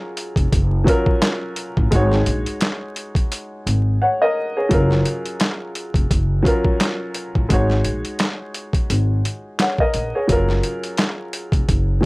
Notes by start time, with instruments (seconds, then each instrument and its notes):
Already playing: upright piano F#3 C#4 F4 G#4 A#4 C#5
0.17 closed hi-hat
0.36 upright bass F1, kick, closed hi-hat
0.53 upright bass F#1, kick, closed hi-hat
0.84 upright piano F#3 C#4 F4, kick, closed hi-hat
0.89 upright piano A#4
1.06 kick
1.22 snare, clap, closed hi-hat
1.56 closed hi-hat
1.77 upright bass A1, kick
1.91 upright bass G#1, upright piano G#3 D#4 F#4, kick, closed hi-hat
1.96 upright piano C#5
2.12 snare
2.26 upright bass A#1, closed hi-hat
2.46 closed hi-hat
2.61 snare, clap, closed hi-hat
2.96 closed hi-hat
3.15 kick, closed hi-hat
3.32 closed hi-hat
3.67 upright bass G#1, closed hi-hat
4.02 upright piano C#5 F#5
4.22 upright piano A#4 D#5
4.57 upright piano G#4 C#5
4.69 upright bass F#1, upright piano F#3 C#4 F4, kick, closed hi-hat
4.74 upright piano A#4
4.91 snare
5.05 closed hi-hat
5.26 closed hi-hat
5.40 snare, clap, closed hi-hat
5.75 closed hi-hat
5.94 upright bass F1, kick, closed hi-hat
6.11 upright bass F#1, kick, closed hi-hat
6.42 upright piano F#3 C#4 F4, kick, closed hi-hat
6.47 upright piano A#4
6.65 kick
6.80 snare, clap, closed hi-hat
7.14 closed hi-hat
7.35 upright bass A1, kick
7.49 upright bass G#1, upright piano G#3 D#4 F#4, kick, closed hi-hat
7.54 upright piano C#5
7.70 snare
7.85 upright bass A#1, closed hi-hat
8.05 closed hi-hat
8.19 snare, clap, closed hi-hat
8.54 closed hi-hat
8.73 kick, closed hi-hat
8.90 upright bass G#1, closed hi-hat
9.25 closed hi-hat
9.59 upright piano C#5 F#5, snare, clap, closed hi-hat
9.78 upright piano A#4 D#5, kick
9.94 upright bass A#1, closed hi-hat
10.15 upright piano G#4 C#5
10.27 upright bass F#1, upright piano F#3 C#4 F4, kick, closed hi-hat
10.32 upright piano A#4
10.49 snare
10.63 closed hi-hat
10.84 closed hi-hat
10.98 snare, clap, closed hi-hat
11.33 closed hi-hat
11.52 upright bass F1, kick, closed hi-hat
11.69 upright bass F#1, kick, closed hi-hat
12.01 upright piano F#3 C#4